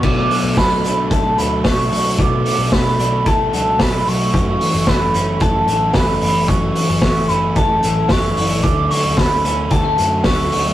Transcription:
<<
  \new Staff \with { instrumentName = "Soft synth lead" } { \time 4/4 \key b \minor \tempo 4 = 112 d'''4 b''4 a''8 b''8 cis'''4 | d'''4 b''4 a''4 b''8 cis'''8~ | cis'''4 b''4 a''8 a''8 b''4 | cis'''4. b''8 a''4 cis'''4 |
d'''8 cis'''8 b''4 a''4 cis'''4 | }
  \new Staff \with { instrumentName = "Overdriven electric guitar" } { \time 4/4 \key b \minor <b, fis a d'>8. <fis a d'>8. <b, fis a d'>4 <b, fis a d'>8 <b, fis a d'>8. <fis a d'>16 | <b, fis a d'>8. <fis a d'>8. <b, fis a d'>4 <b, fis a d'>8 <b, fis a d'>8. <fis a d'>16 | <fis, cis e a cis'>8. <e a cis'>8. <cis e a cis'>4 <cis e a cis'>8 <cis e a cis'>8. <e a cis'>16 | <fis, cis e a cis'>8. <e a cis'>8. <cis e a cis'>4 <cis e a cis'>8 <cis e a cis'>8. <e a cis'>16 |
<d fis a cis'>8. <fis a cis'>8. <d fis a cis'>4 <d fis a cis'>8 <d fis a cis'>8. <fis a cis'>16 | }
  \new Staff \with { instrumentName = "Clean electric guitar" } { \clef bass \time 4/4 \key b \minor b,8 fis8 g16 a16 d'8 a8 fis8 a8 fis8 | b,8 fis8 a8 d'8 a8 fis8 a8 fis8 | fis,8 e8 a8 cis'8 a8 e8 a8 e8 | fis,8 e8 a8 cis'8 a8 e8 a8 e8 |
d8 fis8 a8 cis'8 g16 a16 fis8 a8 fis8 | }
  \new Staff \with { instrumentName = "Picked electric bass" } { \clef bass \time 4/4 \key b \minor b,,8 r16 b,,16 b,,8 b,,8 b,,8 d,8 b,,8 b,,8 | b,,8 r16 b,,16 r8 b,,8 b,,8 cis,8 b,,8 b,,8 | fis,,8 r16 fis,,16 fis,,8 fis,,8 fis,,8 a,,8 fis,,8 fis,,8 | fis,,8 r16 fis,,16 fis,,8 fis,,8 fis,,8 a,,8 fis,,8 fis,,8 |
d,8 r16 d,16 r8 d,8 d,8 fis,8 d,8 d,8 | }
  \new DrumStaff \with { instrumentName = "Drums" } \drummode { \time 4/4 <cymc bd>8 <hho hhp>8 <hho hhp bd sn>8 <hho hhp>8 <hho hhp bd>8 <hho hhp>8 <hho hhp bd sn>8 <hho hhp>8 | <hho hhp bd>8 <hho hhp>8 <hho hhp bd sn>8 <hho hhp>8 <hho hhp bd>8 <hho hhp>8 <hho hhp bd sn>8 <hho hhp>8 | <hho hhp bd>8 <hho hhp>8 <hho hhp bd sn>8 <hho hhp>8 <hho hhp bd>8 <hho hhp>8 <hho hhp bd sn>8 <hho hhp>8 | <hho hhp bd>8 <hho hhp>8 <hho hhp bd sn>8 <hho hhp>8 <hho hhp bd>8 <hho hhp>8 <hho hhp bd sn>8 <hho hhp>8 |
<hho hhp bd>8 <hho hhp>8 <hho hhp bd sn>8 <hho hhp>8 <hho hhp bd>8 <hho hhp>8 <hho hhp bd sn>8 <hho hhp>8 | }
>>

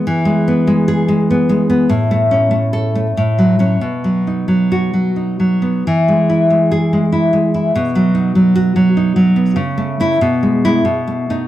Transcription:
\new Staff \with { instrumentName = "Nylon-string guitar" } { \clef bass \time 3/4 \key e \major \tempo 4 = 96 << { r4 \tuplet 3/2 { r8 gis'4 } r4 | r4 \tuplet 3/2 { r8 a'4 r4 cis'8 } | r4 \tuplet 3/2 { r8 fis'4 } r4 | r4 \tuplet 3/2 { r8 gis'4 } r4 |
r4 \tuplet 3/2 { r8 fis'4 } r4 | \tuplet 3/2 { r4 e'8 r4 e'8 r4 dis'8 } | } \\ { \tuplet 3/2 { e8 gis8 b8 gis4 gis8 b8 gis8 b8 } | \tuplet 3/2 { a,8 a8 cis'8 a4 a8 a,8 fis8 fis8 } | \tuplet 3/2 { b,8 fis8 dis'8 fis4 fis8 dis'8 fis8 b8 } | \tuplet 3/2 { e8 gis8 e'8 gis4 gis8 e'8 gis8 e'8 } |
\tuplet 3/2 { b,8 fis8 dis'8 fis4 fis8 dis'8 fis8 b8 } | \tuplet 3/2 { cis8 a8 a8 b,8 gis8 gis8 b,8 a8 a8 } | } >> }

